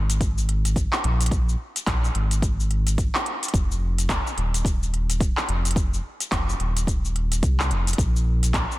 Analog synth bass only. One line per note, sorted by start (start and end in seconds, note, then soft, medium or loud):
0.00 0.87 G#1 medium
1.04 1.56 A#1 loud
1.87 2.10 A#1 loud
2.15 3.09 G#1 medium
3.54 4.20 F1 loud
4.37 5.31 D#1 medium
5.49 6.00 F1 loud
6.32 6.54 F1 loud
6.59 7.42 D#1 medium
7.43 7.72 C2 medium
7.71 7.93 F1 medium
7.98 8.64 A#1 loud